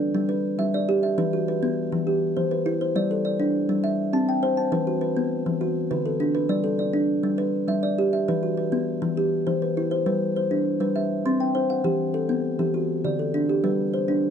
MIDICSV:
0, 0, Header, 1, 2, 480
1, 0, Start_track
1, 0, Key_signature, 1, "major"
1, 0, Tempo, 296589
1, 1915, Time_signature, 12, 3, 24, 8
1, 23145, End_track
2, 0, Start_track
2, 0, Title_t, "Kalimba"
2, 0, Program_c, 0, 108
2, 0, Note_on_c, 0, 62, 77
2, 0, Note_on_c, 0, 74, 59
2, 235, Note_on_c, 0, 55, 77
2, 240, Note_off_c, 0, 62, 0
2, 246, Note_off_c, 0, 74, 0
2, 468, Note_on_c, 0, 71, 62
2, 716, Note_off_c, 0, 55, 0
2, 951, Note_on_c, 0, 76, 61
2, 952, Note_on_c, 0, 55, 68
2, 1191, Note_off_c, 0, 71, 0
2, 1203, Note_on_c, 0, 74, 69
2, 1433, Note_off_c, 0, 55, 0
2, 1435, Note_on_c, 0, 67, 77
2, 1648, Note_off_c, 0, 76, 0
2, 1667, Note_on_c, 0, 76, 64
2, 1908, Note_on_c, 0, 52, 81
2, 1913, Note_off_c, 0, 67, 0
2, 1913, Note_on_c, 0, 71, 67
2, 1917, Note_off_c, 0, 74, 0
2, 2149, Note_off_c, 0, 76, 0
2, 2157, Note_on_c, 0, 66, 64
2, 2382, Note_off_c, 0, 71, 0
2, 2389, Note_off_c, 0, 52, 0
2, 2401, Note_on_c, 0, 71, 64
2, 2632, Note_on_c, 0, 59, 78
2, 2872, Note_off_c, 0, 66, 0
2, 3109, Note_off_c, 0, 59, 0
2, 3113, Note_off_c, 0, 71, 0
2, 3114, Note_on_c, 0, 52, 78
2, 3348, Note_on_c, 0, 67, 69
2, 3589, Note_off_c, 0, 52, 0
2, 3829, Note_on_c, 0, 52, 66
2, 3829, Note_on_c, 0, 72, 58
2, 4065, Note_off_c, 0, 67, 0
2, 4068, Note_on_c, 0, 71, 61
2, 4304, Note_on_c, 0, 64, 78
2, 4305, Note_off_c, 0, 52, 0
2, 4530, Note_off_c, 0, 72, 0
2, 4549, Note_on_c, 0, 72, 59
2, 4782, Note_off_c, 0, 64, 0
2, 4783, Note_off_c, 0, 71, 0
2, 4785, Note_on_c, 0, 55, 81
2, 4790, Note_on_c, 0, 74, 69
2, 5024, Note_off_c, 0, 72, 0
2, 5031, Note_on_c, 0, 69, 61
2, 5240, Note_off_c, 0, 74, 0
2, 5259, Note_on_c, 0, 74, 65
2, 5262, Note_off_c, 0, 55, 0
2, 5495, Note_on_c, 0, 62, 80
2, 5743, Note_off_c, 0, 69, 0
2, 5974, Note_on_c, 0, 55, 77
2, 5976, Note_off_c, 0, 62, 0
2, 5977, Note_off_c, 0, 74, 0
2, 6209, Note_on_c, 0, 76, 65
2, 6215, Note_off_c, 0, 55, 0
2, 6686, Note_on_c, 0, 60, 68
2, 6691, Note_on_c, 0, 81, 61
2, 6931, Note_off_c, 0, 76, 0
2, 6936, Note_on_c, 0, 79, 60
2, 7165, Note_on_c, 0, 72, 75
2, 7169, Note_off_c, 0, 60, 0
2, 7381, Note_off_c, 0, 81, 0
2, 7401, Note_on_c, 0, 81, 63
2, 7639, Note_on_c, 0, 52, 74
2, 7644, Note_on_c, 0, 71, 67
2, 7648, Note_off_c, 0, 72, 0
2, 7653, Note_off_c, 0, 79, 0
2, 7883, Note_on_c, 0, 66, 64
2, 7885, Note_off_c, 0, 81, 0
2, 8093, Note_off_c, 0, 71, 0
2, 8113, Note_on_c, 0, 71, 61
2, 8124, Note_off_c, 0, 52, 0
2, 8360, Note_on_c, 0, 59, 76
2, 8606, Note_off_c, 0, 66, 0
2, 8840, Note_off_c, 0, 71, 0
2, 8841, Note_on_c, 0, 52, 74
2, 8844, Note_off_c, 0, 59, 0
2, 9077, Note_on_c, 0, 66, 70
2, 9085, Note_off_c, 0, 52, 0
2, 9560, Note_on_c, 0, 71, 60
2, 9565, Note_on_c, 0, 50, 69
2, 9800, Note_on_c, 0, 69, 61
2, 9802, Note_off_c, 0, 66, 0
2, 10036, Note_on_c, 0, 62, 79
2, 10046, Note_off_c, 0, 50, 0
2, 10252, Note_off_c, 0, 71, 0
2, 10271, Note_on_c, 0, 71, 64
2, 10508, Note_on_c, 0, 55, 77
2, 10509, Note_on_c, 0, 74, 65
2, 10521, Note_off_c, 0, 62, 0
2, 10523, Note_off_c, 0, 69, 0
2, 10743, Note_on_c, 0, 69, 69
2, 10758, Note_off_c, 0, 71, 0
2, 10970, Note_off_c, 0, 74, 0
2, 10989, Note_on_c, 0, 74, 60
2, 10997, Note_off_c, 0, 55, 0
2, 11222, Note_on_c, 0, 62, 78
2, 11474, Note_off_c, 0, 69, 0
2, 11708, Note_on_c, 0, 55, 72
2, 11714, Note_off_c, 0, 62, 0
2, 11717, Note_off_c, 0, 74, 0
2, 11945, Note_on_c, 0, 71, 71
2, 12197, Note_off_c, 0, 55, 0
2, 12429, Note_on_c, 0, 55, 70
2, 12434, Note_on_c, 0, 76, 62
2, 12672, Note_on_c, 0, 74, 62
2, 12675, Note_off_c, 0, 71, 0
2, 12917, Note_off_c, 0, 55, 0
2, 12923, Note_on_c, 0, 67, 76
2, 13139, Note_off_c, 0, 76, 0
2, 13158, Note_on_c, 0, 76, 62
2, 13399, Note_off_c, 0, 74, 0
2, 13405, Note_off_c, 0, 67, 0
2, 13405, Note_on_c, 0, 52, 78
2, 13410, Note_on_c, 0, 71, 67
2, 13639, Note_on_c, 0, 66, 61
2, 13642, Note_off_c, 0, 76, 0
2, 13858, Note_off_c, 0, 71, 0
2, 13877, Note_on_c, 0, 71, 56
2, 13886, Note_off_c, 0, 52, 0
2, 14116, Note_on_c, 0, 59, 79
2, 14364, Note_off_c, 0, 66, 0
2, 14597, Note_on_c, 0, 52, 75
2, 14602, Note_off_c, 0, 59, 0
2, 14603, Note_off_c, 0, 71, 0
2, 14847, Note_on_c, 0, 67, 70
2, 15083, Note_off_c, 0, 52, 0
2, 15321, Note_on_c, 0, 72, 57
2, 15322, Note_on_c, 0, 52, 69
2, 15570, Note_off_c, 0, 67, 0
2, 15571, Note_on_c, 0, 71, 59
2, 15807, Note_off_c, 0, 52, 0
2, 15816, Note_on_c, 0, 64, 70
2, 16024, Note_off_c, 0, 72, 0
2, 16043, Note_on_c, 0, 72, 66
2, 16268, Note_off_c, 0, 71, 0
2, 16285, Note_on_c, 0, 55, 75
2, 16287, Note_on_c, 0, 71, 63
2, 16295, Note_off_c, 0, 64, 0
2, 16529, Note_off_c, 0, 72, 0
2, 16771, Note_off_c, 0, 55, 0
2, 16773, Note_on_c, 0, 72, 55
2, 17009, Note_on_c, 0, 62, 70
2, 17013, Note_off_c, 0, 71, 0
2, 17483, Note_on_c, 0, 55, 66
2, 17492, Note_on_c, 0, 71, 59
2, 17494, Note_off_c, 0, 62, 0
2, 17497, Note_off_c, 0, 72, 0
2, 17731, Note_off_c, 0, 55, 0
2, 17732, Note_on_c, 0, 76, 60
2, 17977, Note_off_c, 0, 71, 0
2, 18216, Note_on_c, 0, 84, 55
2, 18219, Note_on_c, 0, 60, 68
2, 18455, Note_on_c, 0, 79, 56
2, 18459, Note_off_c, 0, 76, 0
2, 18690, Note_on_c, 0, 72, 70
2, 18703, Note_off_c, 0, 60, 0
2, 18934, Note_on_c, 0, 78, 58
2, 18942, Note_off_c, 0, 84, 0
2, 19167, Note_on_c, 0, 52, 72
2, 19172, Note_on_c, 0, 67, 60
2, 19179, Note_off_c, 0, 72, 0
2, 19182, Note_off_c, 0, 79, 0
2, 19422, Note_off_c, 0, 78, 0
2, 19648, Note_on_c, 0, 69, 61
2, 19659, Note_off_c, 0, 52, 0
2, 19892, Note_on_c, 0, 59, 78
2, 19902, Note_off_c, 0, 67, 0
2, 20378, Note_on_c, 0, 52, 73
2, 20378, Note_on_c, 0, 67, 59
2, 20382, Note_off_c, 0, 69, 0
2, 20383, Note_off_c, 0, 59, 0
2, 20621, Note_on_c, 0, 66, 64
2, 20626, Note_off_c, 0, 52, 0
2, 20867, Note_off_c, 0, 67, 0
2, 21112, Note_on_c, 0, 50, 72
2, 21116, Note_on_c, 0, 74, 58
2, 21350, Note_off_c, 0, 66, 0
2, 21353, Note_on_c, 0, 69, 58
2, 21593, Note_on_c, 0, 62, 76
2, 21595, Note_off_c, 0, 50, 0
2, 21838, Note_off_c, 0, 74, 0
2, 21839, Note_on_c, 0, 67, 64
2, 22071, Note_on_c, 0, 55, 77
2, 22073, Note_on_c, 0, 71, 60
2, 22077, Note_off_c, 0, 62, 0
2, 22077, Note_off_c, 0, 69, 0
2, 22320, Note_off_c, 0, 67, 0
2, 22554, Note_on_c, 0, 72, 57
2, 22556, Note_off_c, 0, 55, 0
2, 22791, Note_on_c, 0, 62, 78
2, 22799, Note_off_c, 0, 71, 0
2, 23145, Note_off_c, 0, 62, 0
2, 23145, Note_off_c, 0, 72, 0
2, 23145, End_track
0, 0, End_of_file